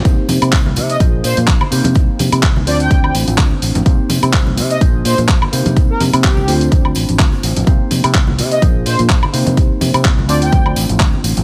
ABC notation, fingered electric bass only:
X:1
M:4/4
L:1/16
Q:"Swing 16ths" 1/4=126
K:Cm
V:1 name="Fingered electric bass" clef=bass
C,, z C, C, C,,2 C,2 B,,,2 B,, B,, B,,, z C, C, | C,, z C, C, C,,2 D,,2 D,,2 =A,,, A,,, D,, z A,,, A,,, | C,, z C, C, C,,2 C,2 B,,,2 B,, B,, B,,, z C, C, | C,, z C, C, C,,2 D,,2 D,,2 =A,,, A,,, D,, z A,,, A,,, |
C,, z C, C, C,,2 C,2 B,,,2 B,, B,, B,,, z C, C, | C,, z C, C, C,,2 D,,2 D,,2 =A,,, A,,, D,, z A,,, A,,, |]